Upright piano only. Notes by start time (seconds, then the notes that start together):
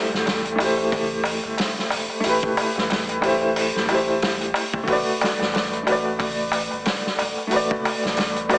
Already playing: A3 E4 G4 C5
0.55 A3 E4
0.61 G4 C5
2.20 A3 E4
2.26 G4 B4
3.21 A3 E4 G4
3.26 C5
3.85 A3 E4
3.91 G4 C5
4.83 A3 F#4
4.90 B4 D5
5.83 A3 F#4
5.89 B4 D5
7.47 A3 F#4
7.53 B4 D5
8.49 A3 F#4 B4
8.53 D5